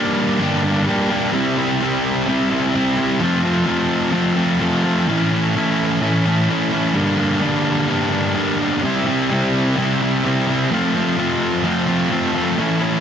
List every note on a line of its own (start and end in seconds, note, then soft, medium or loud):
0.00 0.39 G3 medium
0.00 0.40 A#3 medium
0.00 0.40 D4 medium
0.00 0.41 G4 medium
0.38 0.87 G2 loud
0.38 0.88 D3 medium
0.38 0.65 G3 loud
0.38 0.65 A#3 loud
0.38 0.63 D4 loud
0.38 0.62 G4 loud
0.63 0.85 G3 medium
0.63 0.86 A#3 medium
0.63 0.87 D4 medium
0.63 0.89 G4 medium
0.86 1.11 G3 medium
0.86 1.10 A#3 medium
0.86 1.10 D4 medium
0.86 1.09 G4 medium
1.10 1.32 G3 medium
1.10 1.34 A#3 medium
1.10 1.33 D4 medium
1.10 1.33 G4 medium
1.32 1.80 C3 medium
1.32 1.58 G3 medium
1.32 1.58 C4 loud
1.32 1.56 E4 loud
1.57 1.81 G3 medium
1.57 1.83 C4 medium
1.57 1.83 E4 medium
1.81 2.25 C3 medium
1.81 2.27 G3 medium
1.81 2.28 C4 medium
1.81 2.28 E4 loud
2.26 2.73 C3 loud
2.26 2.52 G3 loud
2.26 2.50 C4 loud
2.26 2.49 E4 loud
2.50 2.74 G3 medium
2.50 2.74 C4 medium
2.50 2.76 E4 medium
2.74 3.20 C3 medium
2.74 2.99 G3 medium
2.74 2.98 C4 medium
2.74 2.96 E4 medium
2.97 3.21 G3 medium
2.97 3.21 C4 medium
2.97 3.20 E4 medium
3.21 3.65 F3 medium
3.21 3.45 A3 medium
3.21 3.43 C4 loud
3.21 3.41 F4 loud
3.42 3.67 A3 medium
3.42 3.67 C4 medium
3.42 3.68 F4 medium
3.66 4.11 F3 medium
3.66 4.12 A3 medium
3.66 4.13 C4 medium
3.66 4.14 F4 medium
4.12 4.59 F3 loud
4.12 4.38 A3 loud
4.12 4.36 C4 loud
4.12 4.35 F4 loud
4.36 4.60 A3 medium
4.36 4.60 C4 medium
4.36 4.62 F4 medium
4.60 5.06 F3 medium
4.60 4.84 A3 medium
4.60 4.83 C4 medium
4.60 4.82 F4 medium
4.83 5.07 A3 medium
4.83 5.07 C4 medium
4.83 5.06 F4 medium
5.07 5.54 A2 loud
5.07 5.54 E3 loud
5.07 5.32 A3 medium
5.07 5.30 C#4 loud
5.07 5.29 E4 loud
5.30 5.55 A3 medium
5.30 5.55 C#4 medium
5.30 5.56 E4 medium
5.55 6.00 E3 medium
5.55 6.01 A3 medium
5.55 6.02 C#4 medium
5.55 6.02 E4 medium
6.00 6.48 A2 medium
6.00 6.48 E3 medium
6.00 6.27 A3 loud
6.00 6.25 C#4 loud
6.00 6.23 E4 loud
6.25 6.49 A3 medium
6.25 6.50 C#4 medium
6.25 6.50 E4 medium
6.49 6.94 E3 medium
6.49 6.73 A3 medium
6.49 6.72 C#4 medium
6.49 6.70 E4 medium
6.71 6.95 A3 medium
6.71 6.95 C#4 medium
6.71 6.94 E4 medium
6.93 7.41 G2 medium
6.93 7.40 D3 medium
6.93 7.20 G3 medium
6.93 7.18 A#3 medium
6.93 7.17 D4 loud
7.18 7.42 G3 medium
7.18 7.41 A#3 medium
7.18 7.43 D4 medium
7.41 7.87 D3 medium
7.41 7.88 G3 medium
7.41 7.89 A#3 medium
7.41 7.89 D4 medium
7.88 8.35 G2 medium
7.88 8.34 D3 medium
7.88 8.12 G3 loud
7.88 8.11 A#3 loud
7.88 8.09 D4 loud
8.10 8.34 G3 medium
8.10 8.35 A#3 medium
8.10 8.37 D4 medium
8.35 8.81 D3 medium
8.35 8.60 G3 medium
8.35 8.59 A#3 medium
8.35 8.58 D4 medium
8.59 8.82 G3 medium
8.59 8.81 A#3 medium
8.59 8.81 D4 medium
8.82 9.29 C3 medium
8.82 9.07 G3 medium
8.82 9.06 C4 loud
8.82 9.04 E4 medium
9.05 9.30 G3 medium
9.05 9.32 C4 medium
9.05 9.32 E4 medium
9.30 9.75 C3 medium
9.30 9.76 G3 medium
9.30 9.77 C4 medium
9.30 9.78 E4 medium
9.76 10.22 C3 loud
9.76 10.01 G3 medium
9.76 10.00 C4 loud
9.76 9.98 E4 medium
9.99 10.23 G3 medium
9.99 10.25 C4 medium
9.99 10.26 E4 medium
10.24 10.69 C3 medium
10.24 10.49 G3 medium
10.24 10.48 C4 medium
10.24 10.46 E4 medium
10.47 10.70 G3 medium
10.47 10.69 C4 medium
10.47 10.68 E4 medium
10.71 11.16 F3 medium
10.71 10.96 A3 loud
10.71 10.94 C4 medium
10.71 10.93 F4 loud
10.94 11.18 A3 medium
10.94 11.18 C4 medium
10.94 11.19 F4 medium
11.17 11.62 F3 medium
11.17 11.63 A3 medium
11.17 11.64 C4 medium
11.17 11.65 F4 medium
11.64 12.09 F3 loud
11.64 11.88 A3 loud
11.64 11.87 C4 loud
11.64 11.85 F4 loud
11.86 12.10 A3 medium
11.86 12.11 C4 medium
11.86 12.12 F4 medium
12.10 12.55 F3 medium
12.10 12.36 A3 medium
12.10 12.34 C4 medium
12.10 12.32 F4 medium
12.33 12.57 A3 medium
12.33 12.56 C4 medium
12.33 12.55 F4 medium
12.58 13.00 A2 medium
12.58 13.00 E3 medium
12.58 12.81 A3 loud
12.58 12.80 C#4 loud
12.58 12.78 E4 medium
12.79 13.00 A3 medium
12.79 13.00 C#4 medium
12.79 13.00 E4 medium